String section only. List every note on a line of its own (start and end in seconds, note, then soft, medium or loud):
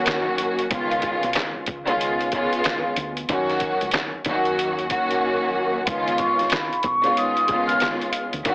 0.00 0.65 D#3 loud
0.00 0.65 F#3 medium
0.00 0.65 A#3 loud
0.00 0.65 C#4 medium
0.00 0.66 F#4 loud
0.70 1.62 D#3 loud
0.70 1.62 G#3 medium
0.70 1.62 B3 medium
0.70 1.62 C#4 medium
0.70 1.63 F4 loud
1.85 2.28 D#3 medium
1.85 2.28 G#3 medium
1.85 2.29 B3 medium
1.85 2.29 C#4 medium
1.85 2.29 F4 loud
2.33 3.09 D#3 medium
2.33 3.09 G#3 medium
2.33 3.10 B3 loud
2.33 3.10 C#4 medium
2.33 3.10 F4 loud
3.29 4.06 D#3 loud
3.29 4.06 F#3 medium
3.29 4.06 A#3 medium
3.29 4.06 C#4 medium
3.29 4.06 F#4 loud
4.27 4.87 D#3 loud
4.27 4.87 F#3 loud
4.27 4.87 A#3 medium
4.27 4.88 C#4 medium
4.27 4.88 F#4 loud
4.90 5.81 D#3 loud
4.90 5.81 F#3 medium
4.90 5.81 A#3 loud
4.90 5.82 C#4 medium
4.90 5.82 F#4 loud
5.86 6.78 D#3 loud
5.86 6.78 G#3 loud
5.86 6.78 B3 medium
5.86 6.79 C#4 medium
5.86 6.79 F4 loud
7.02 7.44 D#3 loud
7.02 7.45 G#3 medium
7.02 7.45 B3 medium
7.02 7.45 C#4 medium
7.02 7.45 F4 loud
7.49 8.25 D#3 loud
7.49 8.26 G#3 loud
7.49 8.26 B3 loud
7.49 8.26 C#4 medium
7.49 8.26 F4 loud
8.45 8.55 D#3 loud
8.45 8.55 F#3 medium
8.45 8.55 A#3 medium
8.45 8.55 C#4 medium
8.45 8.55 F#4 loud